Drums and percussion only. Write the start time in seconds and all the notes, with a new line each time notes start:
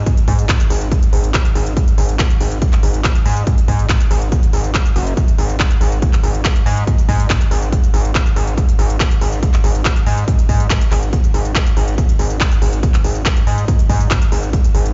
0.06 kick, closed hi-hat
0.17 closed hi-hat
0.28 kick, open hi-hat
0.39 closed hi-hat
0.49 kick, clap, closed hi-hat
0.60 closed hi-hat
0.70 open hi-hat
0.81 closed hi-hat
0.92 kick, closed hi-hat
1.03 closed hi-hat
1.13 open hi-hat
1.24 closed hi-hat
1.34 kick, clap, closed hi-hat
1.45 closed hi-hat
1.55 open hi-hat
1.66 closed hi-hat
1.77 kick, closed hi-hat
1.88 closed hi-hat
1.98 open hi-hat
2.09 closed hi-hat
2.19 kick, clap, closed hi-hat
2.30 closed hi-hat
2.41 open hi-hat
2.52 closed hi-hat
2.62 kick, closed hi-hat
2.73 clap, closed hi-hat
2.83 open hi-hat
2.94 closed hi-hat
3.04 kick, clap, closed hi-hat
3.15 closed hi-hat
3.26 open hi-hat
3.37 closed hi-hat
3.47 kick, closed hi-hat
3.58 closed hi-hat
3.68 kick, open hi-hat
3.79 closed hi-hat
3.89 kick, clap, closed hi-hat
4.00 closed hi-hat
4.11 open hi-hat
4.22 closed hi-hat
4.32 kick, closed hi-hat
4.43 closed hi-hat
4.53 open hi-hat
4.64 closed hi-hat
4.75 kick, clap, closed hi-hat
4.86 closed hi-hat
4.96 open hi-hat
5.07 closed hi-hat
5.17 kick, closed hi-hat
5.28 closed hi-hat
5.38 open hi-hat
5.49 closed hi-hat
5.60 kick, clap, closed hi-hat
5.71 closed hi-hat
5.81 open hi-hat
5.92 closed hi-hat
6.02 kick, closed hi-hat
6.13 clap, closed hi-hat
6.24 open hi-hat
6.35 closed hi-hat
6.45 kick, clap, closed hi-hat
6.56 closed hi-hat
6.66 open hi-hat
6.77 closed hi-hat
6.87 kick, closed hi-hat
6.98 closed hi-hat
7.09 kick, open hi-hat
7.20 closed hi-hat
7.30 kick, clap, closed hi-hat
7.41 closed hi-hat
7.51 open hi-hat
7.62 closed hi-hat
7.72 kick, closed hi-hat
7.84 closed hi-hat
7.94 open hi-hat
8.05 closed hi-hat
8.15 kick, clap, closed hi-hat
8.26 closed hi-hat
8.36 open hi-hat
8.47 closed hi-hat
8.58 kick, closed hi-hat
8.69 closed hi-hat
8.79 open hi-hat
8.90 closed hi-hat
9.00 kick, clap, closed hi-hat
9.11 closed hi-hat
9.21 open hi-hat
9.32 closed hi-hat
9.43 kick, closed hi-hat
9.54 clap, closed hi-hat
9.64 open hi-hat
9.75 closed hi-hat
9.85 kick, clap, closed hi-hat
9.96 closed hi-hat
10.06 open hi-hat
10.17 closed hi-hat
10.28 kick, closed hi-hat
10.39 closed hi-hat
10.49 kick, open hi-hat
10.60 closed hi-hat
10.70 kick, clap, closed hi-hat
10.81 closed hi-hat
10.92 clap, open hi-hat
11.03 closed hi-hat
11.13 kick, closed hi-hat
11.24 closed hi-hat
11.34 open hi-hat
11.45 closed hi-hat
11.55 kick, clap, closed hi-hat
11.66 closed hi-hat
11.77 open hi-hat
11.88 closed hi-hat
11.98 kick, closed hi-hat
12.09 closed hi-hat
12.19 open hi-hat
12.30 closed hi-hat
12.40 kick, clap, closed hi-hat
12.52 closed hi-hat
12.62 open hi-hat
12.73 closed hi-hat
12.83 kick, closed hi-hat
12.94 clap, closed hi-hat
13.04 open hi-hat
13.15 closed hi-hat
13.26 kick, clap, closed hi-hat
13.37 closed hi-hat
13.47 open hi-hat
13.58 closed hi-hat
13.68 kick, closed hi-hat
13.79 closed hi-hat
13.89 kick, open hi-hat
14.01 closed hi-hat
14.11 kick, clap, closed hi-hat
14.22 closed hi-hat
14.32 open hi-hat
14.43 closed hi-hat
14.53 kick, closed hi-hat
14.64 closed hi-hat
14.75 open hi-hat
14.86 closed hi-hat